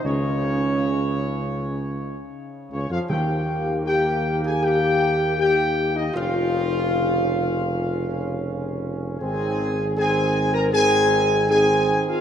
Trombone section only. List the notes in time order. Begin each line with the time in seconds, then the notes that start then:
0.04 C#3
2.72 C#3
2.92 F3
3.11 D#3 A#3
6.16 C#4
6.90 C#3
9.21 D#3 C4
9.98 D#3 C4
10.73 D#3 C4
11.50 D#3 C4
11.89 D#3